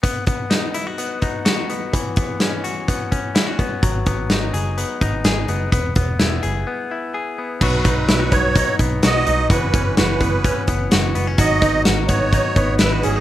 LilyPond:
<<
  \new Staff \with { instrumentName = "Accordion" } { \time 4/4 \key b \major \tempo 4 = 127 r1 | r1 | r1 | r1 |
b'4. cis''4 r8 dis''4 | b'4 b'4. r4. | dis''4 r8 cis''4. b'8 gis'8 | }
  \new Staff \with { instrumentName = "Clean electric guitar" } { \time 4/4 \key b \major b8 b8 dis'8 e'16 fis'16 b8 dis'8 fis'8 b8 | e8 b8 cis'8 fis'8 b8 cis'8 e'16 fis'16 b8 | fis8 b8 dis'8 gis'8 b8 dis'8 gis'8 b8 | b8 b8 e'8 gis'8 b8 e'8 gis'8 b8 |
<fis fis'>8 dis'8 e'16 fis'16 b8 dis'8 b8 fis'8 dis'8 | <e fis'>8 cis'8 fis'8 b8 cis'8 b8 fis'8 b16 cis'16 | <fis fis'>8 dis'8 fis'8 b8 dis'8 b8 e'16 fis'16 cis'16 dis'16 | }
  \new Staff \with { instrumentName = "Steel-string acoustic guitar" } { \time 4/4 \key b \major r1 | r1 | r1 | r1 |
<b, fis b dis'>8 <fis b dis'>8 <b, fis b dis'>8 <fis b dis'>8 <b, fis b dis'>8 <fis b dis'>8 <b, fis b dis'>8 <fis b dis'>8 | <fis, cis e b e'>8 <e b e'>8 <fis, cis e b e'>8 <e b e'>8 <cis e b e'>8 <e b e'>8 <fis, cis e b e'>8 <e b e'>8 | <gis, dis fis b dis'>8 <fis b dis'>8 <gis, dis fis b dis'>8 <fis b dis'>8 <dis fis b dis'>8 <fis b dis'>8 <gis, dis fis b dis'>8 <fis b dis'>8 | }
  \new Staff \with { instrumentName = "Picked electric bass" } { \clef bass \time 4/4 \key b \major r1 | r1 | gis,,8 gis,,8 gis,,8 fis,,8. r16 gis,,8 gis,,8 fis,,8 | e,,8 e,,8 e,,8 fis,,8 r2 |
b,,8 b,,8 b,,8 b,,8. r16 b,,8 b,,8 b,,8 | fis,,8 fis,,8 fis,,8 fis,,8. r16 fis,,8 fis,,8 fis,,8 | gis,,8 gis,,8 gis,,8 gis,,8. r16 gis,,8 gis,,8 gis,,8 | }
  \new DrumStaff \with { instrumentName = "Drums" } \drummode { \time 4/4 <hh bd>8 <hh bd>8 <hh sn>8 hh8 hh8 <hh bd>8 <hh sn>8 hh8 | <hh bd>8 <hh bd>8 <hh sn>8 hh8 <hh bd>8 <hh bd>8 <hh sn>8 <hh bd>8 | <hh bd>8 <hh bd>8 <hh sn>8 hh8 hh8 <hh bd>8 <hh sn>8 hh8 | <hh bd>8 <hh bd>8 <hh sn>8 hh8 r4 r4 |
<cymc bd>8 <hh bd>8 <hh sn>8 <hh bd>8 <hh bd>8 <hh bd>8 <hh sn>8 hh8 | <hh bd>8 <hh bd>8 <hh sn>8 <hh bd>8 <hh bd>8 <hh bd>8 <hh sn>8 hh8 | <hh bd>8 <hh bd>8 <hh sn>8 <hh bd>8 <hh bd>8 <hh bd>8 <hh sn>8 hh8 | }
>>